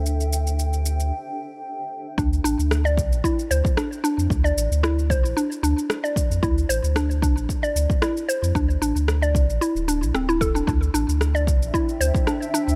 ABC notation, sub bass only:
X:1
M:4/4
L:1/16
Q:"Swing 16ths" 1/4=113
K:Cmix
V:1 name="Sub bass" clef=bass
D,,8 z8 | D,,2 A,,, D,,3 C,, A,,, z2 D,, z4 F,, | D,,2 A,,, D,,3 C,, A,,, z2 D,, z4 F,, | D,,2 A,,, D,,3 C,, A,,, z2 D,, z4 F,, |
D,,2 A,,, D,,3 C,, A,,, z D,,,2 C,, D,,,4 | D,,2 A,,, D,,3 C,, A,,, z2 D,, z4 D,, |]